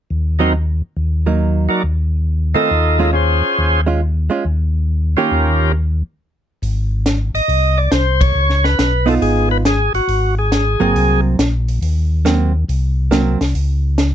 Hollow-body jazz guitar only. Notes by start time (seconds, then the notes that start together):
0.40 F#3 C4 D#4
1.26 F#3 A#3 D#4
2.55 D#3 A3 C4
2.99 G#3 C#4 F4
3.86 G#3 C#4 F4
4.30 G#3 C#4 F4
5.17 D#3 A#3 C#4 G4
9.06 B3 D#4 F4
10.80 F#3 A#3 C4
12.25 F#3 A#3 C4
13.11 F#3 A#3 C4